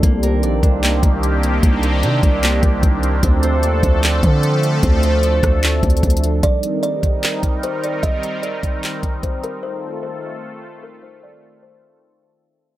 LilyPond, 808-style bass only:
\new Staff \with { instrumentName = "808-style bass" } { \clef bass \time 4/4 \key c \dorian \tempo 4 = 150 c,4 bes,,8 c,4 c,4. | c,4 c8 c,4 c,8 c,4 | d,4 ees,8 d,4 d4. | d,4. d,4 d,8 d,4 |
r1 | r1 | r1 | r1 | }